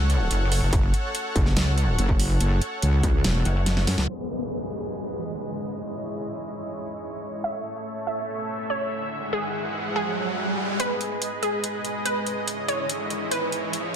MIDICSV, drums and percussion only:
0, 0, Header, 1, 2, 480
1, 0, Start_track
1, 0, Tempo, 419580
1, 832, Time_signature, 4, 2, 24, 8
1, 15969, End_track
2, 0, Start_track
2, 0, Title_t, "Drums"
2, 112, Note_on_c, 9, 42, 49
2, 226, Note_off_c, 9, 42, 0
2, 351, Note_on_c, 9, 42, 76
2, 466, Note_off_c, 9, 42, 0
2, 591, Note_on_c, 9, 46, 93
2, 706, Note_off_c, 9, 46, 0
2, 831, Note_on_c, 9, 36, 117
2, 831, Note_on_c, 9, 42, 79
2, 946, Note_off_c, 9, 36, 0
2, 946, Note_off_c, 9, 42, 0
2, 1071, Note_on_c, 9, 42, 55
2, 1186, Note_off_c, 9, 42, 0
2, 1311, Note_on_c, 9, 42, 81
2, 1426, Note_off_c, 9, 42, 0
2, 1551, Note_on_c, 9, 36, 103
2, 1551, Note_on_c, 9, 42, 52
2, 1666, Note_off_c, 9, 36, 0
2, 1666, Note_off_c, 9, 42, 0
2, 1672, Note_on_c, 9, 38, 36
2, 1786, Note_off_c, 9, 38, 0
2, 1791, Note_on_c, 9, 38, 120
2, 1791, Note_on_c, 9, 42, 80
2, 1906, Note_off_c, 9, 38, 0
2, 1906, Note_off_c, 9, 42, 0
2, 2032, Note_on_c, 9, 42, 54
2, 2146, Note_off_c, 9, 42, 0
2, 2271, Note_on_c, 9, 42, 81
2, 2386, Note_off_c, 9, 42, 0
2, 2392, Note_on_c, 9, 36, 60
2, 2506, Note_off_c, 9, 36, 0
2, 2511, Note_on_c, 9, 46, 97
2, 2626, Note_off_c, 9, 46, 0
2, 2751, Note_on_c, 9, 42, 82
2, 2866, Note_off_c, 9, 42, 0
2, 2992, Note_on_c, 9, 42, 57
2, 3106, Note_off_c, 9, 42, 0
2, 3231, Note_on_c, 9, 42, 83
2, 3345, Note_off_c, 9, 42, 0
2, 3471, Note_on_c, 9, 36, 62
2, 3471, Note_on_c, 9, 42, 56
2, 3586, Note_off_c, 9, 36, 0
2, 3586, Note_off_c, 9, 42, 0
2, 3711, Note_on_c, 9, 38, 124
2, 3711, Note_on_c, 9, 42, 87
2, 3826, Note_off_c, 9, 38, 0
2, 3826, Note_off_c, 9, 42, 0
2, 3951, Note_on_c, 9, 42, 53
2, 4066, Note_off_c, 9, 42, 0
2, 4191, Note_on_c, 9, 38, 62
2, 4191, Note_on_c, 9, 42, 82
2, 4305, Note_off_c, 9, 38, 0
2, 4305, Note_off_c, 9, 42, 0
2, 4312, Note_on_c, 9, 38, 63
2, 4426, Note_off_c, 9, 38, 0
2, 4431, Note_on_c, 9, 38, 87
2, 4431, Note_on_c, 9, 46, 97
2, 4545, Note_off_c, 9, 38, 0
2, 4545, Note_off_c, 9, 46, 0
2, 4552, Note_on_c, 9, 38, 86
2, 4666, Note_off_c, 9, 38, 0
2, 12352, Note_on_c, 9, 42, 79
2, 12466, Note_off_c, 9, 42, 0
2, 12592, Note_on_c, 9, 42, 54
2, 12706, Note_off_c, 9, 42, 0
2, 12832, Note_on_c, 9, 42, 82
2, 12946, Note_off_c, 9, 42, 0
2, 13072, Note_on_c, 9, 42, 54
2, 13187, Note_off_c, 9, 42, 0
2, 13312, Note_on_c, 9, 42, 79
2, 13427, Note_off_c, 9, 42, 0
2, 13552, Note_on_c, 9, 42, 51
2, 13666, Note_off_c, 9, 42, 0
2, 13792, Note_on_c, 9, 42, 79
2, 13906, Note_off_c, 9, 42, 0
2, 14032, Note_on_c, 9, 42, 54
2, 14146, Note_off_c, 9, 42, 0
2, 14272, Note_on_c, 9, 42, 84
2, 14386, Note_off_c, 9, 42, 0
2, 14512, Note_on_c, 9, 42, 54
2, 14626, Note_off_c, 9, 42, 0
2, 14752, Note_on_c, 9, 42, 82
2, 14866, Note_off_c, 9, 42, 0
2, 14991, Note_on_c, 9, 42, 54
2, 15106, Note_off_c, 9, 42, 0
2, 15231, Note_on_c, 9, 42, 86
2, 15346, Note_off_c, 9, 42, 0
2, 15471, Note_on_c, 9, 42, 54
2, 15586, Note_off_c, 9, 42, 0
2, 15711, Note_on_c, 9, 42, 80
2, 15825, Note_off_c, 9, 42, 0
2, 15969, End_track
0, 0, End_of_file